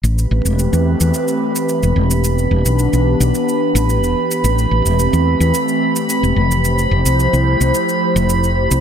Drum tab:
SH |xx-xxx-xxx-xxx-x|xx-xxx-xxx-xxx-x|xx-xxx-xxx-xxx-x|xx-xxx-xxx-xxx-x|